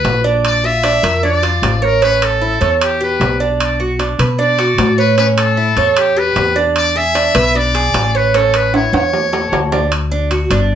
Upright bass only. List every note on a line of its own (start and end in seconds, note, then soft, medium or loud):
0.04 0.97 A#1 medium
1.03 1.58 F2 medium
1.62 2.55 A1 medium
2.61 3.16 E2 medium
3.20 4.13 B1 medium
4.19 4.74 B2 medium
4.78 5.71 A2 medium
5.76 6.32 E2 medium
6.36 7.29 E2 medium
7.35 7.90 B1 loud
7.94 8.87 A1 medium
8.93 9.48 E2 medium
9.52 10.45 D2 medium
10.50 10.75 G1 medium